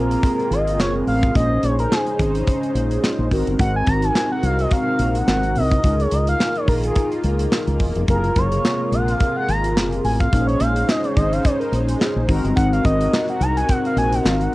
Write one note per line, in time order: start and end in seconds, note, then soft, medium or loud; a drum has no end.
0.00 0.16 A#1 medium
0.00 1.33 C3 medium
0.00 3.28 G#3 medium
0.00 1.33 A#3 medium
0.00 1.31 C4 medium
0.00 1.31 F4 medium
0.00 1.33 F4 loud
0.00 1.32 G#4 medium
0.00 0.54 A#4 medium
0.00 1.32 A#4 medium
0.11 closed hi-hat medium
0.23 kick loud
0.23 closed hi-hat medium
0.40 closed hi-hat soft
0.51 0.79 G#1 medium
0.51 0.80 D#5 loud
0.51 closed hi-hat medium
0.68 closed hi-hat medium
0.79 1.01 F#1 medium
0.79 0.93 C#5 loud
0.79 snare loud
0.79 clap medium
1.07 1.29 A1 medium
1.07 1.34 F5 loud
1.07 open hi-hat soft
1.23 kick loud
1.23 closed hi-hat medium
1.35 1.57 A#1 loud
1.35 3.30 C#3 medium
1.35 3.27 C#4 medium
1.35 3.28 D#4 medium
1.35 3.30 D#4 loud
1.35 3.28 G#4 medium
1.35 3.30 C5 medium
1.35 3.28 C5 medium
1.35 1.65 D#5 loud
1.35 kick loud
1.35 closed hi-hat medium
1.63 1.85 A#1 medium
1.63 1.79 C#5 loud
1.63 closed hi-hat medium
1.79 1.94 A#4 medium
1.79 closed hi-hat medium
1.92 2.20 G#4 medium
1.92 snare loud
1.92 clap medium
2.07 closed hi-hat soft
2.19 2.41 G#1 loud
2.19 kick medium
2.19 closed hi-hat medium
2.35 closed hi-hat soft
2.47 kick loud
2.47 closed hi-hat medium
2.63 closed hi-hat soft
2.75 2.97 A#1 medium
2.75 closed hi-hat medium
2.91 closed hi-hat medium
3.04 snare loud
3.04 clap medium
3.19 3.28 A#1 medium
3.31 3.44 G#1 medium
3.31 5.81 C3 medium
3.31 5.81 G#3 medium
3.31 5.80 C4 medium
3.31 5.80 D#4 medium
3.31 5.81 F#4 loud
3.31 5.80 F#4 medium
3.31 5.80 A#4 medium
3.31 kick medium
3.31 open hi-hat soft
3.47 3.57 G1 medium
3.47 closed hi-hat medium
3.59 3.81 G#1 loud
3.59 3.75 F#5 loud
3.59 kick loud
3.59 closed hi-hat medium
3.76 3.90 G#5 loud
3.86 4.09 G#1 loud
3.86 4.05 A#5 loud
3.86 kick medium
3.86 closed hi-hat medium
4.02 4.31 G#5 loud
4.02 closed hi-hat soft
4.15 snare loud
4.15 clap medium
4.32 4.46 F#5 loud
4.43 4.65 C2 medium
4.43 4.62 F5 loud
4.43 closed hi-hat medium
4.59 4.72 D#5 medium
4.59 closed hi-hat medium
4.71 5.18 F5 loud
4.71 kick loud
4.71 closed hi-hat medium
4.99 5.21 A#1 medium
4.99 closed hi-hat medium
5.15 5.59 F#5 loud
5.15 closed hi-hat medium
5.27 5.57 G#1 medium
5.27 snare loud
5.27 clap medium
5.43 closed hi-hat soft
5.55 5.77 C2 medium
5.55 6.02 D#5 loud
5.55 open hi-hat medium
5.71 kick loud
5.71 closed hi-hat medium
5.83 6.05 C#2 loud
5.83 8.06 D#3 medium
5.83 10.29 A#3 medium
5.83 8.04 D#4 medium
5.83 8.06 F4 medium
5.83 8.04 F4 medium
5.83 8.04 G#4 medium
5.83 8.05 A#4 medium
5.83 kick loud
5.83 closed hi-hat medium
6.00 6.15 C#5 medium
6.00 closed hi-hat soft
6.11 6.34 C#2 medium
6.11 6.28 D#5 medium
6.11 closed hi-hat medium
6.27 6.58 F5 loud
6.27 closed hi-hat medium
6.40 snare loud
6.40 clap medium
6.55 6.68 C#5 medium
6.55 closed hi-hat soft
6.68 6.90 A#1 medium
6.68 6.76 A#4 medium
6.68 kick medium
6.68 open hi-hat medium
6.84 7.10 G#4 medium
6.84 closed hi-hat medium
6.96 kick loud
6.96 closed hi-hat medium
7.12 closed hi-hat soft
7.24 7.46 C#2 loud
7.24 closed hi-hat medium
7.39 closed hi-hat medium
7.52 snare loud
7.52 clap medium
7.67 7.77 C#2 medium
7.67 closed hi-hat soft
7.80 7.92 E1 medium
7.80 kick medium
7.80 open hi-hat medium
7.96 8.05 F1 medium
7.96 closed hi-hat medium
8.08 8.30 F#1 loud
8.08 10.28 C3 medium
8.08 10.31 C3 medium
8.08 10.31 G#3 medium
8.08 10.29 F4 medium
8.08 10.31 F4 loud
8.08 10.29 G#4 medium
8.08 10.29 A#4 medium
8.08 8.39 A#4 medium
8.08 kick loud
8.08 closed hi-hat medium
8.24 closed hi-hat soft
8.36 8.58 F#1 loud
8.36 8.95 C#5 loud
8.36 kick medium
8.36 closed hi-hat medium
8.52 closed hi-hat medium
8.65 snare loud
8.65 clap medium
8.92 9.14 A#1 medium
8.92 9.11 F#5 medium
8.92 closed hi-hat medium
9.08 9.36 F5 medium
9.08 closed hi-hat medium
9.20 kick loud
9.20 closed hi-hat medium
9.37 9.51 F#5 loud
9.48 9.76 G#1 medium
9.48 9.77 A#5 loud
9.48 closed hi-hat medium
9.64 closed hi-hat medium
9.76 9.98 F#1 loud
9.76 snare loud
9.76 clap medium
9.92 closed hi-hat soft
10.04 10.26 A1 medium
10.04 10.12 G#5 loud
10.04 open hi-hat medium
10.20 10.46 F5 loud
10.20 kick medium
10.20 closed hi-hat medium
10.32 10.54 A#1 medium
10.32 12.27 C#3 loud
10.32 14.55 G#3 medium
10.32 12.25 C#4 medium
10.32 12.25 D#4 medium
10.32 12.27 D#4 loud
10.32 12.25 G#4 medium
10.32 10.41 A#4 medium
10.32 12.27 C5 medium
10.32 kick loud
10.32 closed hi-hat medium
10.40 12.29 C5 medium
10.47 10.61 C#5 loud
10.47 closed hi-hat soft
10.60 10.82 A#1 loud
10.60 10.89 F5 loud
10.60 closed hi-hat medium
10.76 closed hi-hat medium
10.88 11.06 D#5 loud
10.88 snare loud
10.88 clap medium
11.04 11.17 C#5 medium
11.04 closed hi-hat soft
11.16 11.38 G#1 loud
11.16 11.33 D#5 medium
11.16 kick medium
11.16 closed hi-hat medium
11.32 11.46 F5 loud
11.32 closed hi-hat medium
11.45 11.60 C#5 medium
11.45 kick loud
11.45 closed hi-hat medium
11.60 11.73 A#4 medium
11.60 closed hi-hat soft
11.72 11.94 A#1 medium
11.72 closed hi-hat medium
11.89 closed hi-hat medium
12.01 snare loud
12.01 clap medium
12.16 12.26 A#1 medium
12.28 12.41 G#1 loud
12.28 14.55 C3 medium
12.28 14.55 C4 medium
12.28 14.55 D#4 medium
12.28 14.55 F#4 medium
12.28 14.55 A#4 medium
12.28 kick medium
12.28 open hi-hat medium
12.44 12.54 G1 medium
12.44 closed hi-hat medium
12.56 12.79 G#1 loud
12.56 12.71 F#5 loud
12.56 kick loud
12.56 closed hi-hat medium
12.73 12.84 F5 medium
12.73 closed hi-hat soft
12.85 13.06 G#1 loud
12.85 13.26 D#5 loud
12.85 kick medium
12.85 closed hi-hat medium
13.01 closed hi-hat medium
13.13 snare loud
13.13 clap medium
13.28 13.43 F#5 medium
13.28 closed hi-hat soft
13.40 13.62 C2 medium
13.40 13.56 A#5 loud
13.40 closed hi-hat medium
13.57 13.71 G#5 loud
13.57 closed hi-hat medium
13.69 13.85 F#5 loud
13.69 kick loud
13.69 closed hi-hat loud
13.85 13.97 F5 medium
13.85 closed hi-hat soft
13.96 14.18 A#1 medium
13.96 14.15 G#5 loud
13.96 closed hi-hat medium
14.12 14.27 F#5 loud
14.12 closed hi-hat medium
14.25 14.46 G#1 medium
14.25 14.43 F5 loud
14.25 snare loud
14.25 clap loud
14.41 14.53 F#5 loud
14.41 closed hi-hat soft